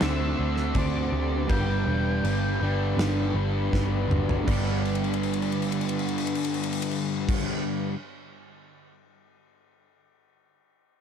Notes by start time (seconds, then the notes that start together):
Already playing: D3 A3 D4 F#4 C5
0.00 D2 A3 C4 C5 E5, snare, crash
0.38 D2 A3 D4 F#4 C5
0.57 snare
0.74 D2 A3 C4 D4 F#4 C5 D5, kick, crash
1.12 D2 C4 G4 C5
1.47 G1 G2 D3 G3 B3 D4 G4 B4 G5, kick, crash
1.52 B4
1.85 E1 D4 G4 B4
2.22 G1 B3 D4 G4 B4, crash
2.27 B4
2.60 G1 G3 D4 G4 B4
2.64 G2 D3
2.96 G1 B3 D4 B4, snare, crash
3.34 G1 D4 G4 B4
3.71 G1 B3 D4 B4, kick, snare
3.75 D4 G4 B4
4.08 G1 D4 F#4 B4, mid tom
4.29 floor tom
4.44 G1 G2 G3 B3 D4, kick, crash
4.49 D3 G3 B3 D4 G4 B4
4.85 crash
4.95 ride
5.04 crash
5.14 ride
5.23 crash
5.33 ride
5.42 crash
5.52 ride
5.62 crash
5.72 ride
5.81 crash
5.89 ride
5.99 crash
6.08 ride
6.18 crash
6.27 ride
6.35 crash
6.44 ride
6.54 crash
6.63 ride
6.72 crash
6.82 ride
6.91 crash
7.29 kick, crash